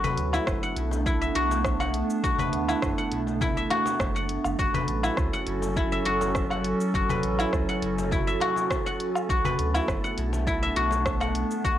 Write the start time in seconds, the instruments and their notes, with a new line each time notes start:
Already playing: ambient pad A3 B3 D4, guzheng E4 F#4 E5 F#5, synth texture A4
0.04 guzheng B4, cajon bass, shaker
0.18 analog synth bass D2, closed hi-hat
0.33 guzheng E4, low woodblock, shaker
0.47 analog synth bass F#1, kick, cross-stick, shaker
0.63 guzheng F#5, shaker
0.76 analog synth bass B1, closed hi-hat
0.91 cajon slap, shaker
1.06 guzheng E4, kick, shaker
1.21 guzheng E5, shaker
1.35 analog synth bass B1, guzheng F#4, closed hi-hat
1.51 cajon slap, shaker
1.64 kick, cross-stick, shaker
1.80 guzheng F#5, cajon slap, low woodblock, shaker
1.94 closed hi-hat
2.10 shaker
2.24 analog synth bass B1, guzheng F#4, kick, shaker
2.38 guzheng B4, cajon bass, shaker
2.53 analog synth bass D2, closed hi-hat
2.68 guzheng E4, low woodblock, shaker
2.82 analog synth bass F#1, kick, cross-stick, shaker
2.98 guzheng F#5, shaker
3.12 analog synth bass B1, closed hi-hat
3.27 cajon slap, shaker
3.41 guzheng E4, cajon bass, kick, shaker
3.57 guzheng E5, shaker
3.70 guzheng F#4, cajon slap, closed hi-hat, low woodblock
3.86 cajon slap, shaker
3.99 analog synth bass F#1, kick, cross-stick, cajon slap, shaker
4.16 guzheng F#5, shaker
4.29 closed hi-hat
4.45 analog synth bass F#1, low woodblock, shaker
4.58 analog synth bass F#1, ambient pad F#3 C#4 F#4 A4, guzheng F#4, kick, shaker
4.74 guzheng B4, cajon bass, shaker
4.88 analog synth bass A1, closed hi-hat
5.03 guzheng E4, low woodblock, shaker
5.17 analog synth bass C#2, kick, cross-stick, shaker
5.33 guzheng F#5, shaker
5.47 analog synth bass F#1, closed hi-hat
5.62 cajon slap, shaker
5.77 guzheng E4, kick, shaker
5.92 guzheng E5, shaker
6.06 analog synth bass F#1, guzheng F#4, closed hi-hat
6.21 cajon slap, shaker
6.35 kick, cross-stick, shaker
6.50 guzheng F#5, cajon slap, low woodblock, shaker
6.64 closed hi-hat
6.81 shaker
6.94 analog synth bass F#1, guzheng F#4, kick, shaker
7.09 guzheng B4, cajon bass, shaker
7.23 analog synth bass A1, closed hi-hat
7.39 guzheng E4, low woodblock, shaker
7.53 analog synth bass C#2, kick, cross-stick, shaker
7.69 guzheng F#5, shaker
7.82 analog synth bass F#1, closed hi-hat
7.98 cajon slap, shaker
8.11 guzheng E4, cajon bass, kick, shaker
8.27 guzheng E5, shaker
8.40 guzheng F#4, cajon slap, closed hi-hat, low woodblock
8.56 cajon slap, shaker
8.70 kick, cross-stick, cajon slap, shaker
8.86 guzheng F#5, shaker
9.00 closed hi-hat
9.15 low woodblock, shaker
9.29 analog synth bass B1, ambient pad A3 B3 D4, guzheng F#4, kick, shaker
9.45 guzheng B4, cajon bass, shaker
9.59 analog synth bass D2, closed hi-hat
9.75 guzheng E4, low woodblock, shaker
9.88 analog synth bass F#1, kick, cross-stick, shaker
10.04 guzheng F#5, shaker
10.18 analog synth bass B1, closed hi-hat
10.33 cajon slap, shaker
10.47 guzheng E4, kick, shaker
10.63 guzheng E5, shaker
10.76 analog synth bass B1, guzheng F#4, closed hi-hat
10.91 cajon slap, shaker
11.06 kick, cross-stick, shaker
11.20 guzheng F#5, cajon slap, low woodblock, shaker
11.35 closed hi-hat
11.51 shaker
11.64 analog synth bass B1, guzheng F#4, kick, shaker